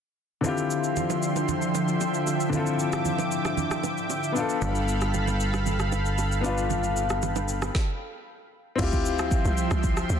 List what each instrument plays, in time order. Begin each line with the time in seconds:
0.41 grand piano D3 C4 E4, analog synth pad D3 F3 E5 G5 C6, low conga, shaker
0.47 grand piano F4 G4
0.58 shaker
0.71 shaker
0.84 shaker
0.96 high bongo, low conga, shaker
1.10 low bongo, shaker
1.23 shaker
1.36 low bongo, shaker
1.49 low conga, shaker
1.62 shaker
1.75 low bongo, shaker
1.88 shaker
2.01 high bongo, shaker
2.14 shaker
2.27 high bongo, shaker
2.40 shaker
2.49 grand piano D3 C4 E4, analog synth pad D6, low conga, shaker
2.55 grand piano F4 A4
2.67 shaker
2.80 shaker
2.92 cross-stick, shaker
3.05 high bongo, low conga, shaker
3.19 low bongo, shaker
3.32 shaker
3.45 cross-stick, low bongo, shaker
3.57 low conga, shaker
3.71 cross-stick, shaker
3.83 low bongo, shaker
3.97 shaker
4.10 high bongo, shaker
4.24 shaker
4.32 grand piano B3 D4, analog synth pad A4 F5 B5, high bongo, shaker
4.37 grand piano F4 A4
4.49 shaker
4.62 analog synth bass G1, low conga, shaker
4.75 shaker
4.88 shaker
5.01 cross-stick, shaker
5.14 high bongo, low conga, shaker
5.28 low bongo, shaker
5.40 shaker
5.54 cross-stick, low bongo, shaker
5.66 low conga, shaker
5.80 cross-stick, shaker
5.92 low bongo, shaker
6.06 shaker
6.18 high bongo, shaker
6.32 shaker
6.41 grand piano B3 D4, high bongo, shaker
6.46 grand piano F4 B4
6.58 shaker
6.70 low conga, shaker
6.84 shaker
6.97 shaker
7.10 cross-stick, shaker
7.22 high bongo, low conga, shaker
7.36 low bongo, shaker
7.49 shaker
7.62 cross-stick, low bongo, shaker
7.75 kick, snare
8.76 log drum bass D2, analog synth pad F3 E5 G5 C6, grand piano C4 E4, kick, crash, shaker
8.81 grand piano F4 G4
8.92 kick, shaker
9.06 shaker
9.19 cross-stick, shaker
9.31 kick, shaker
9.45 log drum bass C2, shaker
9.58 shaker
9.71 log drum bass C2, cross-stick, shaker
9.84 kick, shaker
9.97 cross-stick, shaker
10.10 log drum bass D2, shaker